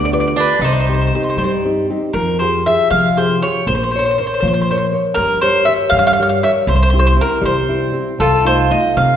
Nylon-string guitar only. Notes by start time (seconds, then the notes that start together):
Already playing: D3
0.12 F4 G4 B4
0.36 F4 G4 B4
0.62 C3
0.88 C4 D#4 G4
1.15 C4 D#4 G4
1.39 G3
1.65 C4 D#4 G4
1.90 C4 D#4 G4
2.15 F3
2.41 F4 G4 G#4
2.67 F4 G4 G#4
2.92 C3
3.17 F4 G4 G#4
3.42 F4 G4 G#4
3.68 A#3
3.95 A#4 C5 C#5
4.20 A#4 C5 C#5
4.43 F3
4.70 A#4 C5 C#5
4.93 A#4 C5 C#5
5.17 G3
5.43 G4 A#4 C#5
5.68 G4 A#4 C#5
5.94 G3
6.20 G4 A#4 C#5
6.44 G4 A#4 C#5
6.68 C3
6.93 C4 E4 G4
7.16 C4 E4 G4
7.42 G3
7.68 C4 E4 G4
7.92 C4 E4 G4
8.18 C3
8.45 A3 D#4 F4
8.71 A3 D#4 F4
8.97 C3